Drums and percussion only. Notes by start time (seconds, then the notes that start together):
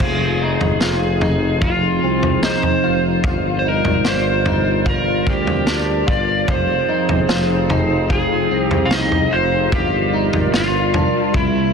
0.00 kick, floor tom, crash
0.61 floor tom
0.81 snare
1.21 floor tom
1.61 kick, floor tom
2.23 floor tom
2.43 snare
2.63 floor tom
3.24 kick, floor tom
3.85 floor tom
4.05 snare
4.46 floor tom
4.86 kick, floor tom
5.27 kick
5.47 floor tom
5.67 snare
6.08 kick
6.48 kick, floor tom
7.09 floor tom
7.29 snare
7.70 floor tom
8.10 kick, floor tom
8.71 floor tom
8.91 snare
9.12 floor tom
9.72 kick, floor tom
10.33 floor tom
10.54 snare
10.94 floor tom
11.34 kick, floor tom